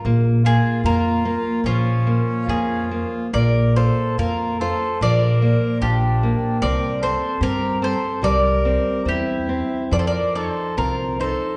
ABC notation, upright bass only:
X:1
M:2/4
L:1/8
Q:1/4=72
K:Bbm
V:1 name="Upright bass" clef=bass
B,,,2 F,,2 | B,,,2 F,,2 | [K:Bb] B,,,2 F,,2 | B,,,2 B,,,2 |
C,,2 G,,2 | C,,2 =E,,2 | F,,2 C,,2 |]